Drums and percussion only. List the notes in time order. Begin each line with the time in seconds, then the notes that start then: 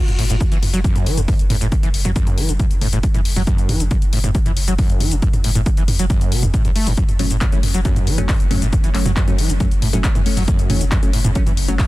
0.08 closed hi-hat, mid tom, shaker
0.19 open hi-hat
0.30 closed hi-hat, shaker
0.41 kick, closed hi-hat, mid tom, shaker
0.52 closed hi-hat, shaker
0.63 mid tom, open hi-hat
0.74 closed hi-hat, shaker
0.84 kick, closed hi-hat, shaker
0.96 closed hi-hat, mid tom, shaker
1.06 open hi-hat
1.17 closed hi-hat, mid tom, shaker
1.28 kick, open hi-hat, shaker
1.39 closed hi-hat, shaker
1.50 mid tom, open hi-hat
1.61 closed hi-hat, shaker
1.72 kick, closed hi-hat, mid tom, shaker
1.83 closed hi-hat, shaker
1.94 open hi-hat
2.05 closed hi-hat, mid tom, shaker
2.16 kick, closed hi-hat, shaker
2.27 closed hi-hat, mid tom, shaker
2.38 open hi-hat
2.49 closed hi-hat, shaker
2.60 kick, closed hi-hat, mid tom, shaker
2.71 closed hi-hat, shaker
2.81 mid tom, open hi-hat
2.93 closed hi-hat, shaker
3.03 kick, closed hi-hat, shaker
3.14 closed hi-hat, mid tom, shaker
3.25 open hi-hat
3.36 mid tom, open hi-hat, shaker
3.47 kick, closed hi-hat, shaker
3.58 closed hi-hat, shaker
3.69 mid tom, open hi-hat
3.80 closed hi-hat, shaker
3.91 kick, closed hi-hat, mid tom, shaker
4.02 closed hi-hat, shaker
4.13 open hi-hat
4.24 closed hi-hat, mid tom, shaker
4.35 kick, closed hi-hat, shaker
4.46 closed hi-hat, mid tom, shaker
4.57 open hi-hat
4.68 closed hi-hat, shaker
4.79 kick, mid tom, open hi-hat, shaker
4.90 closed hi-hat, shaker
5.00 mid tom, open hi-hat
5.12 closed hi-hat, shaker
5.22 kick, closed hi-hat, shaker
5.33 closed hi-hat, mid tom, shaker
5.44 open hi-hat
5.55 closed hi-hat, mid tom, shaker
5.66 kick, closed hi-hat, shaker
5.77 closed hi-hat, shaker
5.88 mid tom, open hi-hat
5.99 closed hi-hat, shaker
6.10 kick, closed hi-hat, mid tom, shaker
6.21 closed hi-hat, shaker
6.32 open hi-hat
6.43 closed hi-hat, mid tom, shaker
6.54 kick, closed hi-hat, shaker
6.65 closed hi-hat, mid tom, shaker
6.76 open hi-hat
6.87 open hi-hat, shaker
6.97 kick, closed hi-hat, shaker
7.09 closed hi-hat, mid tom, shaker
7.19 open hi-hat
7.30 closed hi-hat, shaker
7.41 kick, clap, closed hi-hat, mid tom, shaker
7.52 closed hi-hat, shaker
7.63 mid tom, open hi-hat
7.74 closed hi-hat, shaker
7.85 kick, closed hi-hat, shaker
7.96 closed hi-hat, mid tom, shaker
8.07 open hi-hat
8.18 closed hi-hat, mid tom, shaker
8.29 kick, clap, open hi-hat, shaker
8.40 closed hi-hat, shaker
8.51 mid tom, open hi-hat
8.62 closed hi-hat, shaker
8.73 kick, closed hi-hat, mid tom, shaker
8.84 closed hi-hat, shaker
8.95 clap, open hi-hat
9.06 closed hi-hat, mid tom, shaker
9.17 kick, clap, closed hi-hat, shaker
9.28 closed hi-hat, mid tom, shaker
9.38 open hi-hat
9.50 closed hi-hat, shaker
9.60 kick, closed hi-hat, mid tom, shaker
9.71 closed hi-hat, shaker
9.82 mid tom, open hi-hat
9.93 closed hi-hat, shaker
10.04 kick, clap, closed hi-hat, shaker
10.15 closed hi-hat, mid tom, shaker
10.26 open hi-hat
10.37 mid tom, open hi-hat, shaker
10.48 kick, closed hi-hat, shaker
10.59 closed hi-hat, shaker
10.70 mid tom, open hi-hat
10.81 closed hi-hat, shaker
10.92 kick, clap, closed hi-hat, mid tom, shaker
11.03 closed hi-hat, shaker
11.13 open hi-hat
11.25 closed hi-hat, mid tom, shaker
11.35 kick, closed hi-hat, shaker
11.47 closed hi-hat, mid tom, shaker
11.57 open hi-hat
11.68 closed hi-hat, shaker
11.79 kick, clap, mid tom, open hi-hat, shaker